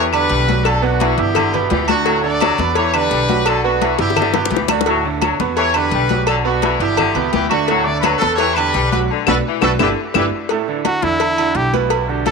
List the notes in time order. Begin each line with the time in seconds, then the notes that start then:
Already playing: E2 E3 G4
0.13 D3 D4 G4 B4 D5, high conga, low agogo, claves
0.29 B1 G3, cowbell, high conga
0.47 F#3 F#4 F#5, high conga, low agogo
0.64 D3 D4 F#4 A4, cowbell, high conga, low agogo, claves
0.82 B2 A3 B3 D4 F#4 B4, high conga
1.00 E3, cowbell, high conga, low agogo
1.18 G1 E3 B3 E4 G4 E5, cowbell
1.35 D3, cowbell, high conga, low conga, low agogo, claves
1.54 B2 B3 B4, high conga, low conga, low agogo
1.70 D2 E3 G4, cowbell, high conga, low timbale
1.88 D3 A3 D4 F#4 D5, high conga, low agogo, claves
2.05 A2 F#3 A3 A4, cowbell, high conga, low agogo
2.23 D3 D4 F#4 A4 D5, high conga
2.41 F#3, cowbell, high conga, low agogo, claves
2.58 E2 B3 B4 B5, cowbell, high conga
2.75 E3 G4 C#5, cowbell, high conga, low agogo
2.94 D3 D4 G4 B4 D5, high conga, low agogo, claves
3.11 B1 G3, cowbell, high conga
3.29 F#3 F#4 F#5, high conga, low agogo
3.46 D3 D4 F#4 A4, cowbell, high conga, low agogo, claves
3.64 B2 A3 B3 D4 F#4 B4, high conga
3.82 E3, cowbell, high conga, low agogo
3.99 G1 E3 B3 E4 G4 E5, cowbell, high bongo
4.10 high bongo
4.16 D3, cowbell, high conga, low conga, low agogo, claves
4.22 high bongo
4.34 B2 B3 B4, low bongo, high conga, low conga, low agogo
4.45 low bongo
4.51 D2 E3 G4, cowbell, high conga
4.56 low bongo
4.68 D3 A3 D4 F#4 D5, low bongo, high conga, low agogo, claves
4.81 low bongo
4.86 A2 F#3 A3 A4, cowbell, low agogo
5.05 D3 D4 D5, high conga
5.21 F#3, cowbell, high conga, low agogo, claves
5.40 E2 B3 B4 B5, cowbell, high conga
5.56 E3 G4 C#5, cowbell, high conga, low agogo
5.74 D3 D4 G4 B4 D5, high conga, low agogo, claves
5.91 B1 G3, cowbell, high conga
6.09 F#3 F#4 F#5, high conga, low agogo
6.27 D3 D4 F#4 A4, cowbell, low agogo, claves
6.44 B2 A3 B3 D4 F#4 B4, high conga
6.62 E3, cowbell, high conga, low agogo
6.80 G1 E3 B3 E4 G4 E5, cowbell
6.97 D3, cowbell, high conga, low conga, low agogo, claves
7.15 C#2 B2 B3 B4, high conga, low conga, low agogo
7.33 D2 E3 G4, cowbell, high conga
7.49 D3 A3 D4 F#4 D5, high conga, low agogo, claves
7.68 A2 F#3 A3 A4, cowbell, low agogo
7.84 D3 D4 D5, high conga
8.01 F#3 B4, cowbell, high conga, low agogo, claves
8.18 E2 B3 A4 B4 B5, cowbell, high conga
8.36 E3 G4 C#5, cowbell, high conga, low agogo
8.54 D3 D4 G4 B4 D5, high conga, low agogo, claves
8.74 B1 G3, cowbell, high conga
8.91 F#3 F#4 B4 F#5, high conga, low agogo
9.10 D3
9.27 B1 B3 D4 F#4 A4 B4, cowbell, high conga, high timbale, claves
9.47 E3
9.61 B1 B3 D4 F#4 A4 B4, cowbell, high conga, high timbale, claves
9.79 G1 D3 D4 E4 G4 B4, cowbell, high conga, high timbale, claves
10.14 G1 E3 D4 E4 G4 B4, cowbell, high conga, high timbale, claves
10.49 A2 A3 A4, cowbell, high conga, low agogo
10.68 D3 D4 E4, high conga
10.85 F#4, cowbell, high conga, low agogo
11.02 E2 D3 D4 E4, cowbell, high conga
11.20 cowbell, high conga, low agogo
11.38 D3 D4 E4, high conga, low agogo
11.55 B1 G4, cowbell, high conga
11.73 B2 B3 B4, high conga, low agogo
11.90 cowbell, high conga, low agogo
12.09 D3 D4 F#4, high conga
12.26 A4, cowbell, high conga, low agogo